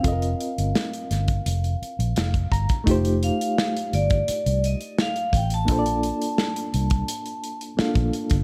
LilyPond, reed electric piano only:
\new Staff \with { instrumentName = "Reed electric piano" } { \time 4/4 \key f \mixolydian \tempo 4 = 85 << { r2. f''8 bes''8 | r1 | r1 | } \\ { <c' f' a' bes' ees''>1 | <a ees' f' g' c''>1 | <bes d' f' a' c'' d''>2. <bes d' f' a' f''>4 | } >> }